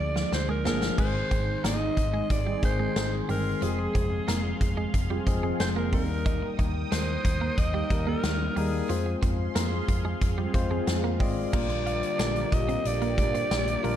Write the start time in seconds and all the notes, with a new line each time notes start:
Already playing: F3 A#3 D4 G#4 D5
0.00 D2
0.16 F3, snare
0.32 D2 C5, muted clean electric guitar stroke, snare
0.49 G#3 A#4
0.65 G1 F3 A#3 D4 G#4 A#4, snare
0.82 snare
0.98 G#1 D#3 G#3 C4 D#4 G#4 C5 C6, kick, crash
1.15 muted clean electric guitar stroke
1.31 G#1 C4, kick, closed hi-hat
1.64 G#1 A#3 D#5, snare, closed hi-hat
1.97 G#1, muted clean electric guitar stroke, kick, closed hi-hat
2.14 G#3
2.30 G#1 D5, kick, closed hi-hat
2.47 G3 C4 D#4 G#4
2.62 G#1 D#3 G#3 C4 G#4 C5, muted clean electric guitar stroke, kick, closed hi-hat
2.80 G#3 C4 D#4 G#4
2.96 G#1, snare, closed hi-hat
3.28 G1 D#3 G3 G#3 C4 G#4 A#4, open hi-hat
3.61 F1 F3 G#3 C4 G4 G#4 F5, closed hi-hat
3.69 G#4
3.79 muted clean electric guitar stroke
3.95 F1 C4, kick, closed hi-hat
4.28 F1 A#3, snare, closed hi-hat
4.61 F1, muted clean electric guitar stroke, kick, closed hi-hat
4.77 G#3
4.94 F1, kick, closed hi-hat
5.10 G3 C4 F4 G#4
5.26 F1 F3 G#3 C4 G#4, muted clean electric guitar stroke, kick, closed hi-hat
5.43 G#3 C4 F4 G#4
5.60 F1 C5, muted clean electric guitar stroke, snare, closed hi-hat
5.76 A#3 A#4
5.92 D#2 G3 A#3 C4 D#4 A#4 G5 D#6, kick, open hi-hat
6.26 D#4, kick, closed hi-hat
6.42 muted clean electric guitar stroke
6.59 D#2 D#4, kick, closed hi-hat
6.92 D#2 C4 C5, snare, closed hi-hat
7.25 D#2, muted clean electric guitar stroke, kick, closed hi-hat
7.41 A#3
7.58 D#2 D#5, kick, closed hi-hat
7.74 G3 A#3 D#4 G4
7.90 D#2 G3 A#3 D#4 A#4, muted clean electric guitar stroke, kick, closed hi-hat
8.07 A#3 D#4 G4 A#4
8.23 D#2, snare, closed hi-hat
8.56 D#2 G3 A#3 D#4 G#4 A#4, open hi-hat
8.89 F2 F3 G#3 C4 F4 G#4 C5 F5 C6, closed hi-hat
9.06 muted clean electric guitar stroke
9.22 F2 C4, kick, closed hi-hat
9.55 F2 A#3, snare, closed hi-hat
9.88 F2, muted clean electric guitar stroke, kick, closed hi-hat
10.05 G#3
10.21 F2, kick, closed hi-hat
10.38 G3 C4 F4 G#4
10.54 F2 G#3 C4 F4 C5, muted clean electric guitar stroke, kick, closed hi-hat
10.71 G#3 C4 F4 G#4
10.87 F2, muted clean electric guitar stroke, snare, closed hi-hat
11.04 A#3
11.20 G#1 G#3 C4 F4 D5 D#5, kick, open hi-hat
11.53 A#1 D3 G3 A#3 D4 F4 G4 A#4, kick, crash
11.70 muted clean electric guitar stroke, closed hi-hat
11.86 F4, closed hi-hat
12.03 closed hi-hat
12.19 A#1 D4, snare, tambourine
12.36 closed hi-hat
12.52 A#1 D#5, muted clean electric guitar stroke, kick, closed hi-hat
12.69 C4, closed hi-hat
12.85 A#1 D5, closed hi-hat
13.02 A#3, closed hi-hat
13.18 A#2, muted clean electric guitar stroke, kick, closed hi-hat
13.35 C4, closed hi-hat
13.51 A#1, snare, tambourine
13.68 closed hi-hat
13.84 A#1 G3 A#3 D4 F4 A#4, open hi-hat